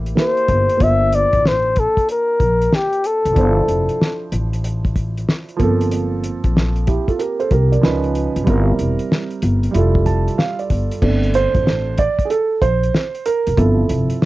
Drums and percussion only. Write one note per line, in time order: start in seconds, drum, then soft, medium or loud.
0.06 closed hi-hat soft
0.17 snare loud
0.37 closed hi-hat soft
0.48 kick medium
0.48 closed hi-hat medium
0.70 closed hi-hat soft
0.80 kick loud
0.80 closed hi-hat medium
1.13 closed hi-hat medium
1.33 kick medium
1.33 closed hi-hat soft
1.46 snare loud
1.76 kick medium
1.76 closed hi-hat medium
1.97 kick medium
1.97 closed hi-hat soft
2.09 closed hi-hat medium
2.40 kick medium
2.40 closed hi-hat medium
2.62 closed hi-hat soft
2.73 snare loud
2.93 closed hi-hat soft
3.04 closed hi-hat medium
3.26 closed hi-hat soft
3.36 kick loud
3.36 closed hi-hat medium
3.68 closed hi-hat medium
3.89 closed hi-hat soft
4.01 snare loud
4.32 closed hi-hat medium
4.53 closed hi-hat soft
4.64 closed hi-hat medium
4.85 kick medium
4.85 closed hi-hat soft
4.96 kick medium
4.96 closed hi-hat medium
5.17 closed hi-hat soft
5.29 snare loud
5.49 closed hi-hat soft
5.60 kick medium
5.60 closed hi-hat medium
5.81 closed hi-hat medium
5.91 closed hi-hat medium
6.24 closed hi-hat medium
6.44 kick medium
6.44 closed hi-hat soft
6.57 snare loud
6.76 closed hi-hat soft
6.87 kick medium
6.87 closed hi-hat medium
7.08 kick medium
7.08 closed hi-hat soft
7.20 closed hi-hat medium
7.40 closed hi-hat soft
7.51 kick medium
7.51 closed hi-hat medium
7.73 closed hi-hat soft
7.83 snare loud
8.04 closed hi-hat soft
8.15 closed hi-hat medium
8.36 closed hi-hat medium
8.47 kick loud
8.47 closed hi-hat medium
8.79 closed hi-hat medium
8.99 closed hi-hat soft
9.12 snare loud
9.31 closed hi-hat soft
9.42 closed hi-hat medium
9.63 closed hi-hat soft
9.74 closed hi-hat medium
9.95 kick medium
10.06 kick medium
10.06 closed hi-hat medium
10.28 closed hi-hat soft
10.39 snare loud
10.59 closed hi-hat soft
10.70 kick medium
10.70 closed hi-hat medium
10.91 closed hi-hat medium
11.02 kick loud
11.02 crash medium
11.23 closed hi-hat soft
11.34 closed hi-hat medium
11.55 kick medium
11.55 closed hi-hat soft
11.67 snare loud
11.98 kick medium
11.98 closed hi-hat medium
12.19 kick medium
12.19 closed hi-hat soft
12.30 closed hi-hat medium
12.62 kick medium
12.62 closed hi-hat medium
12.83 closed hi-hat soft
12.95 snare loud
13.15 closed hi-hat soft
13.26 closed hi-hat medium
13.47 closed hi-hat medium
13.58 kick loud
13.58 closed hi-hat medium
13.89 closed hi-hat medium
14.10 closed hi-hat soft
14.22 snare loud